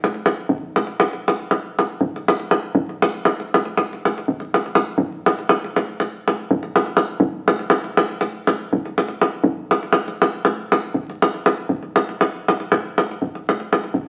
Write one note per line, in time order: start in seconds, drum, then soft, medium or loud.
0.04 davul high medium
0.14 davul high soft
0.26 davul high medium
0.49 davul low medium
0.76 davul high medium
0.87 davul high soft
1.00 davul high medium
1.13 davul high soft
1.28 davul high medium
1.51 davul high medium
1.79 davul high medium
2.01 davul low medium
2.16 davul high soft
2.28 davul high medium
2.40 davul high soft
2.51 davul high medium
2.75 davul low loud
2.89 davul high soft
3.02 davul high medium
3.25 davul high medium
3.40 davul high soft
3.54 davul high medium
3.65 davul high soft
3.77 davul high medium
3.93 davul high soft
4.05 davul high medium
4.18 davul high soft
4.28 davul low medium
4.40 davul high soft
4.54 davul high medium
4.66 davul high soft
4.75 davul high medium
4.98 davul low medium
5.26 davul high medium
5.39 davul high soft
5.49 davul high medium
5.64 davul high soft
5.76 davul high medium
6.00 davul high medium
6.28 davul high medium
6.51 davul low loud
6.63 davul high soft
6.76 davul high medium
6.86 davul high soft
6.97 davul high medium
7.20 davul low loud
7.48 davul high medium
7.59 davul high soft
7.70 davul high medium
7.84 davul high soft
7.97 davul high medium
8.21 davul high medium
8.47 davul high medium
8.73 davul low loud
8.85 davul high soft
8.98 davul high medium
9.08 davul high soft
9.22 davul high medium
9.44 davul low loud
9.71 davul high medium
9.83 davul high soft
9.93 davul high medium
10.08 davul high soft
10.22 davul high medium
10.45 davul high medium
10.72 davul high medium
10.94 davul low medium
11.10 davul high soft
11.22 davul high medium
11.34 davul high soft
11.46 davul high medium
11.69 davul low medium
11.83 davul high soft
11.96 davul high medium
12.09 davul high soft
12.21 davul high medium
12.48 davul high medium
12.60 davul high soft
12.72 davul high medium
12.72 davul low medium
12.98 davul high medium
13.11 davul high soft
13.22 davul low medium
13.35 davul high soft
13.49 davul high medium
13.60 davul high soft
13.73 davul high medium
13.84 davul high soft
13.94 davul low medium